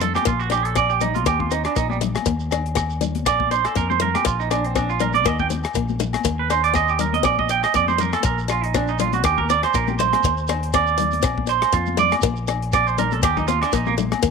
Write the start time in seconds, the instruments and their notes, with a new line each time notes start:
Already playing: fingered electric bass F2
0.00 steel-string acoustic guitar A3, clean electric guitar A4, closed hi-hat, low conga, shekere
0.15 clean electric guitar G4, cross-stick, closed hi-hat, high conga, low agogo, shekere
0.25 fingered electric bass A#1, steel-string acoustic guitar A#3, clean electric guitar F4, kick, closed hi-hat, shekere
0.40 clean electric guitar F#4, shekere
0.50 steel-string acoustic guitar D4, clean electric guitar G4, cross-stick, closed hi-hat, low agogo, shekere
0.65 clean electric guitar A4, closed hi-hat
0.75 steel-string acoustic guitar C4, clean electric guitar D5, kick, cross-stick, closed hi-hat, low agogo, shekere
0.90 clean electric guitar G4, shekere
1.01 steel-string acoustic guitar D4, clean electric guitar D#4, closed hi-hat, low conga, shekere
1.14 clean electric guitar F4, closed hi-hat, high conga, shekere
1.26 fingered electric bass D#2, steel-string acoustic guitar A#3, clean electric guitar G4, kick, cross-stick, closed hi-hat, low agogo, shekere
1.40 clean electric guitar F4, kick, high conga
1.51 steel-string acoustic guitar C4, clean electric guitar D#4, closed hi-hat, shekere
1.64 clean electric guitar D4, cross-stick, closed hi-hat, low agogo, shekere
1.76 fingered electric bass A#1, steel-string acoustic guitar A#3, clean electric guitar D#4, kick, closed hi-hat, shekere
1.90 clean electric guitar G3, high conga, shekere
2.01 steel-string acoustic guitar A3, closed hi-hat, low conga, shekere
2.15 cross-stick, closed hi-hat, high conga, low agogo, shekere
2.26 fingered electric bass D#2, steel-string acoustic guitar A#3, kick, closed hi-hat, shekere
2.40 shekere
2.51 steel-string acoustic guitar D4, cross-stick, closed hi-hat, low agogo, shekere
2.66 closed hi-hat
2.75 steel-string acoustic guitar C4, kick, cross-stick, closed hi-hat, low agogo, shekere
2.90 shekere
3.01 steel-string acoustic guitar D4, closed hi-hat, low conga, shekere
3.15 closed hi-hat, high conga, shekere
3.26 fingered electric bass A#1, steel-string acoustic guitar C4, clean electric guitar D5, kick, cross-stick, closed hi-hat, low agogo, shekere
3.40 kick, high conga
3.51 steel-string acoustic guitar D4, clean electric guitar C5, closed hi-hat, shekere
3.64 clean electric guitar A4, cross-stick, closed hi-hat, low agogo, shekere
3.75 fingered electric bass F2, steel-string acoustic guitar A#3, clean electric guitar A#4, kick, closed hi-hat, shekere
3.90 clean electric guitar C5, high conga, shekere
4.00 steel-string acoustic guitar A3, clean electric guitar A#4, closed hi-hat, low conga
4.14 clean electric guitar G4, cross-stick, closed hi-hat, high conga, low agogo, shekere
4.25 fingered electric bass A#1, clean electric guitar F4, muted steel-string acoustic guitar stroke, kick, closed hi-hat, shekere
4.40 clean electric guitar D#4, shekere
4.51 clean electric guitar D4, steel-string acoustic guitar D4, cross-stick, closed hi-hat, low agogo, shekere
4.64 clean electric guitar C4, closed hi-hat
4.75 steel-string acoustic guitar C4, clean electric guitar D4, kick, cross-stick, closed hi-hat, low agogo, shekere
4.90 clean electric guitar F4, shekere
5.00 steel-string acoustic guitar D4, clean electric guitar A#4, closed hi-hat, low conga, shekere
5.13 clean electric guitar D5, closed hi-hat, high conga, shekere
5.25 fingered electric bass D#2, steel-string acoustic guitar A#3, clean electric guitar D#5, kick, cross-stick, closed hi-hat, low agogo, shekere
5.39 clean electric guitar G5, kick, high conga, shekere
5.50 steel-string acoustic guitar C4, closed hi-hat, high conga, shekere
5.63 cross-stick, closed hi-hat, low agogo, shekere
5.74 fingered electric bass A#1, steel-string acoustic guitar A#3, kick, closed hi-hat, shekere
5.88 high conga, shekere
6.00 steel-string acoustic guitar A3, closed hi-hat, low conga, shekere
6.13 cross-stick, closed hi-hat, high conga, low agogo
6.24 fingered electric bass D#2, steel-string acoustic guitar A#3, kick, closed hi-hat, shekere
6.39 clean electric guitar B4
6.50 steel-string acoustic guitar D4, clean electric guitar C5, cross-stick, closed hi-hat, low agogo, shekere
6.64 clean electric guitar D5, closed hi-hat
6.74 steel-string acoustic guitar C4, clean electric guitar D#5, kick, cross-stick, closed hi-hat, low agogo, shekere
6.88 clean electric guitar G4, shekere
6.99 steel-string acoustic guitar D4, clean electric guitar A#4, closed hi-hat, low conga, shekere
7.13 clean electric guitar D#5, closed hi-hat, high conga
7.23 fingered electric bass A#1, steel-string acoustic guitar C4, clean electric guitar D5, kick, cross-stick, closed hi-hat, low agogo, shekere
7.38 clean electric guitar D#5, kick, high conga
7.49 clean electric guitar G5, muted steel-string acoustic guitar stroke, closed hi-hat, shekere
7.63 clean electric guitar D#5, cross-stick, closed hi-hat, low agogo, shekere
7.74 fingered electric bass F2, steel-string acoustic guitar A#3, clean electric guitar D5, kick, closed hi-hat, shekere
7.88 clean electric guitar C5, high conga, shekere
7.98 steel-string acoustic guitar A3, clean electric guitar A#4, closed hi-hat, low conga, shekere
8.13 clean electric guitar A4, cross-stick, closed hi-hat, high conga, low agogo, shekere
8.23 fingered electric bass A#1, steel-string acoustic guitar A#3, clean electric guitar A#4, kick, closed hi-hat, shekere
8.38 shekere
8.48 steel-string acoustic guitar D4, clean electric guitar F4, cross-stick, closed hi-hat, low agogo, shekere
8.64 clean electric guitar D#4, closed hi-hat
8.74 steel-string acoustic guitar C4, clean electric guitar D4, kick, cross-stick, closed hi-hat, low agogo, shekere
8.88 clean electric guitar D#4, shekere
8.99 steel-string acoustic guitar D4, clean electric guitar F4, closed hi-hat, low conga, shekere
9.13 clean electric guitar F#4, closed hi-hat, high conga, shekere
9.24 fingered electric bass D#2, clean electric guitar G4, muted steel-string acoustic guitar stroke, kick, cross-stick, closed hi-hat, low agogo, shekere
9.38 clean electric guitar A#4, kick, high conga
9.49 steel-string acoustic guitar C4, clean electric guitar D5, closed hi-hat, shekere
9.63 clean electric guitar C5, cross-stick, closed hi-hat, low agogo, shekere
9.74 fingered electric bass A#1, steel-string acoustic guitar A#3, clean electric guitar A#4, kick, closed hi-hat, shekere
9.88 clean electric guitar G4, high conga, shekere
9.99 steel-string acoustic guitar A3, clean electric guitar C5, closed hi-hat, low conga, shekere
10.13 cross-stick, closed hi-hat, high conga, low agogo
10.23 fingered electric bass D#2, steel-string acoustic guitar A#3, kick, closed hi-hat, shekere
10.37 shekere
10.48 steel-string acoustic guitar D4, cross-stick, closed hi-hat, low agogo, shekere
10.63 closed hi-hat
10.73 steel-string acoustic guitar C4, clean electric guitar D5, kick, cross-stick, closed hi-hat, low agogo, shekere
10.87 shekere
10.98 steel-string acoustic guitar D4, closed hi-hat, low conga, shekere
11.11 closed hi-hat, high conga, shekere
11.22 fingered electric bass A#1, steel-string acoustic guitar C4, kick, cross-stick, closed hi-hat, low agogo, shekere
11.38 kick, high conga
11.47 steel-string acoustic guitar D4, clean electric guitar C5, closed hi-hat, shekere
11.61 cross-stick, closed hi-hat, low agogo, shekere
11.72 fingered electric bass F2, steel-string acoustic guitar A#3, clean electric guitar F4, kick, closed hi-hat, shekere
11.86 high conga, shekere
11.97 steel-string acoustic guitar A3, clean electric guitar D5, closed hi-hat, low conga, shekere
12.11 cross-stick, closed hi-hat, high conga, low agogo, shekere
12.21 fingered electric bass A#1, steel-string acoustic guitar A#3, kick, closed hi-hat, shekere
12.36 shekere
12.47 steel-string acoustic guitar D4, cross-stick, closed hi-hat, low agogo, shekere
12.62 closed hi-hat
12.73 steel-string acoustic guitar C4, clean electric guitar D5, kick, cross-stick, closed hi-hat, low agogo, shekere
12.87 clean electric guitar C5, shekere
12.98 steel-string acoustic guitar D4, clean electric guitar A#4, closed hi-hat, low conga, shekere
13.11 clean electric guitar A4, closed hi-hat, high conga, shekere
13.22 fingered electric bass D#2, steel-string acoustic guitar A#3, clean electric guitar G4, kick, cross-stick, closed hi-hat, low agogo, shekere
13.37 clean electric guitar D#4, kick, low conga, shekere
13.48 steel-string acoustic guitar C4, clean electric guitar F4, closed hi-hat, high conga, shekere
13.61 clean electric guitar D4, cross-stick, closed hi-hat, low agogo, shekere
13.72 fingered electric bass A#1, steel-string acoustic guitar A#3, clean electric guitar D#4, kick, closed hi-hat, shekere
13.86 clean electric guitar A#3, high conga, shekere
13.98 steel-string acoustic guitar A3, closed hi-hat, low conga, shekere
14.11 cross-stick, closed hi-hat, high conga, low agogo, shekere
14.23 fingered electric bass D#2, steel-string acoustic guitar A#3, kick, closed hi-hat, shekere